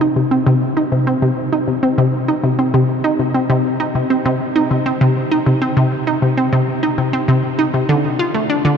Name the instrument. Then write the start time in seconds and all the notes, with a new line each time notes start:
synth arpeggio sound
0.01 D#4
0.16 C3
0.31 C4
0.46 C3
0.77 D#4
0.92 C3
1.07 C4
1.22 C3
1.53 D#4
1.68 C3
1.83 C4
1.98 C3
2.28 D#4
2.43 C3
2.59 C4
2.74 C3
3.04 D#4
3.19 C3
3.34 C4
3.50 C3
3.80 D#4
3.95 C3
4.10 C4
4.25 C3
4.56 D#4
4.71 C3
4.86 C4
5.01 C3
5.31 D#4
5.46 C3
5.62 C4
5.77 C3
6.07 D#4
6.22 C3
6.37 C4
6.53 C3
6.83 D#4
6.98 C3
7.13 C4
7.28 C3
7.59 D#4
7.74 C3
7.89 D3
8.19 F4
8.34 A3
8.50 D4
8.65 D3